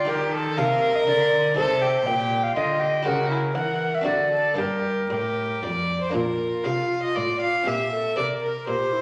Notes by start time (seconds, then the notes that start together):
Already playing: F4
0.05 D#3 D#4 G4 A#4
0.33 A4
0.57 C3 A#4 F5
0.96 D#5
1.07 D3 D5
1.54 C3 D#4 G4 A4 C5
1.82 G4
2.06 A#2 G5
2.43 F5
2.55 D3 F4 D#5
2.79 G4
3.03 C#3 E4 F#4 G4 A#4
3.30 E4
3.54 E3 A#4 F#5
3.95 E5
4.01 C4 D4 F#4
4.06 D3 F#4 D5
4.31 A4
4.54 G2 A#3 D4 G4
4.58 G2 A#4
5.10 A2 G4
5.62 F2 D5
6.01 C5
6.09 A#3 D4 F4 A#4
6.14 A#2 F4
6.64 C3 F5
7.03 D#5
7.15 A2 D5
7.40 F5
7.64 A#2 C4 G4 E5
7.92 A4
8.16 C3 A#4 C5 D5
8.42 A#4
8.67 A#2 G4 C5
8.93 E4